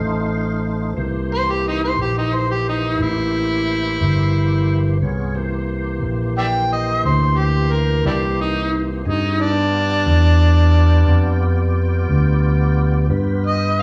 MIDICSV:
0, 0, Header, 1, 4, 480
1, 0, Start_track
1, 0, Tempo, 674157
1, 691, Time_signature, 12, 3, 24, 8
1, 9844, End_track
2, 0, Start_track
2, 0, Title_t, "Harmonica"
2, 0, Program_c, 0, 22
2, 954, Note_on_c, 0, 72, 93
2, 1073, Note_on_c, 0, 67, 87
2, 1083, Note_off_c, 0, 72, 0
2, 1174, Note_off_c, 0, 67, 0
2, 1195, Note_on_c, 0, 63, 72
2, 1296, Note_off_c, 0, 63, 0
2, 1312, Note_on_c, 0, 72, 72
2, 1414, Note_off_c, 0, 72, 0
2, 1436, Note_on_c, 0, 67, 65
2, 1536, Note_off_c, 0, 67, 0
2, 1553, Note_on_c, 0, 63, 68
2, 1676, Note_on_c, 0, 72, 75
2, 1686, Note_off_c, 0, 63, 0
2, 1776, Note_off_c, 0, 72, 0
2, 1789, Note_on_c, 0, 67, 75
2, 1892, Note_off_c, 0, 67, 0
2, 1914, Note_on_c, 0, 63, 73
2, 2150, Note_on_c, 0, 64, 94
2, 2161, Note_off_c, 0, 63, 0
2, 3552, Note_off_c, 0, 64, 0
2, 4544, Note_on_c, 0, 74, 54
2, 4544, Note_on_c, 0, 76, 54
2, 4544, Note_on_c, 0, 79, 77
2, 4599, Note_off_c, 0, 76, 0
2, 4604, Note_off_c, 0, 74, 0
2, 4770, Note_off_c, 0, 79, 0
2, 4789, Note_on_c, 0, 75, 76
2, 5013, Note_off_c, 0, 75, 0
2, 5025, Note_on_c, 0, 72, 68
2, 5256, Note_on_c, 0, 67, 74
2, 5266, Note_off_c, 0, 72, 0
2, 5501, Note_on_c, 0, 70, 69
2, 5511, Note_off_c, 0, 67, 0
2, 5728, Note_off_c, 0, 70, 0
2, 5740, Note_on_c, 0, 62, 50
2, 5740, Note_on_c, 0, 64, 50
2, 5740, Note_on_c, 0, 67, 71
2, 5783, Note_off_c, 0, 64, 0
2, 5790, Note_off_c, 0, 62, 0
2, 5968, Note_off_c, 0, 67, 0
2, 5988, Note_on_c, 0, 63, 62
2, 6212, Note_off_c, 0, 63, 0
2, 6466, Note_on_c, 0, 63, 75
2, 6701, Note_on_c, 0, 62, 98
2, 6712, Note_off_c, 0, 63, 0
2, 8105, Note_off_c, 0, 62, 0
2, 9588, Note_on_c, 0, 75, 81
2, 9842, Note_off_c, 0, 75, 0
2, 9844, End_track
3, 0, Start_track
3, 0, Title_t, "Tonewheel organ"
3, 0, Program_c, 1, 16
3, 0, Note_on_c, 1, 57, 59
3, 0, Note_on_c, 1, 63, 61
3, 0, Note_on_c, 1, 65, 55
3, 0, Note_on_c, 1, 72, 58
3, 662, Note_off_c, 1, 57, 0
3, 664, Note_off_c, 1, 65, 0
3, 666, Note_off_c, 1, 72, 0
3, 668, Note_off_c, 1, 63, 0
3, 688, Note_on_c, 1, 72, 60
3, 689, Note_on_c, 1, 52, 60
3, 690, Note_on_c, 1, 58, 55
3, 691, Note_on_c, 1, 67, 53
3, 3542, Note_off_c, 1, 52, 0
3, 3542, Note_off_c, 1, 72, 0
3, 3543, Note_off_c, 1, 58, 0
3, 3543, Note_off_c, 1, 67, 0
3, 3571, Note_on_c, 1, 65, 59
3, 3576, Note_on_c, 1, 59, 54
3, 3576, Note_on_c, 1, 73, 49
3, 3577, Note_on_c, 1, 68, 53
3, 3808, Note_on_c, 1, 58, 59
3, 3809, Note_on_c, 1, 67, 56
3, 3809, Note_on_c, 1, 72, 56
3, 3810, Note_on_c, 1, 52, 61
3, 3811, Note_off_c, 1, 65, 0
3, 3813, Note_off_c, 1, 59, 0
3, 3814, Note_off_c, 1, 68, 0
3, 3814, Note_off_c, 1, 73, 0
3, 6422, Note_off_c, 1, 58, 0
3, 6422, Note_off_c, 1, 67, 0
3, 6422, Note_off_c, 1, 72, 0
3, 6423, Note_off_c, 1, 52, 0
3, 6443, Note_on_c, 1, 66, 53
3, 6444, Note_on_c, 1, 60, 50
3, 6444, Note_on_c, 1, 75, 49
3, 6445, Note_on_c, 1, 68, 52
3, 6686, Note_off_c, 1, 66, 0
3, 6686, Note_off_c, 1, 75, 0
3, 6687, Note_off_c, 1, 60, 0
3, 6687, Note_off_c, 1, 68, 0
3, 6689, Note_on_c, 1, 65, 66
3, 6692, Note_on_c, 1, 74, 62
3, 6693, Note_on_c, 1, 59, 61
3, 6693, Note_on_c, 1, 67, 59
3, 9299, Note_off_c, 1, 65, 0
3, 9301, Note_off_c, 1, 74, 0
3, 9302, Note_off_c, 1, 59, 0
3, 9302, Note_off_c, 1, 67, 0
3, 9326, Note_on_c, 1, 71, 61
3, 9328, Note_on_c, 1, 59, 53
3, 9329, Note_on_c, 1, 65, 56
3, 9331, Note_on_c, 1, 67, 55
3, 9844, Note_off_c, 1, 59, 0
3, 9844, Note_off_c, 1, 65, 0
3, 9844, Note_off_c, 1, 67, 0
3, 9844, Note_off_c, 1, 71, 0
3, 9844, End_track
4, 0, Start_track
4, 0, Title_t, "Fingered electric bass"
4, 0, Program_c, 2, 33
4, 0, Note_on_c, 2, 33, 82
4, 671, Note_off_c, 2, 33, 0
4, 693, Note_on_c, 2, 36, 70
4, 1391, Note_off_c, 2, 36, 0
4, 1414, Note_on_c, 2, 34, 74
4, 2111, Note_off_c, 2, 34, 0
4, 2128, Note_on_c, 2, 33, 67
4, 2828, Note_off_c, 2, 33, 0
4, 2853, Note_on_c, 2, 31, 87
4, 3550, Note_off_c, 2, 31, 0
4, 3574, Note_on_c, 2, 36, 76
4, 4271, Note_off_c, 2, 36, 0
4, 4289, Note_on_c, 2, 34, 75
4, 4988, Note_off_c, 2, 34, 0
4, 5014, Note_on_c, 2, 38, 63
4, 5710, Note_off_c, 2, 38, 0
4, 5726, Note_on_c, 2, 36, 81
4, 6426, Note_off_c, 2, 36, 0
4, 6447, Note_on_c, 2, 43, 78
4, 7146, Note_off_c, 2, 43, 0
4, 7164, Note_on_c, 2, 40, 80
4, 7864, Note_off_c, 2, 40, 0
4, 7883, Note_on_c, 2, 41, 70
4, 8583, Note_off_c, 2, 41, 0
4, 8611, Note_on_c, 2, 38, 79
4, 9306, Note_off_c, 2, 38, 0
4, 9326, Note_on_c, 2, 43, 76
4, 9844, Note_off_c, 2, 43, 0
4, 9844, End_track
0, 0, End_of_file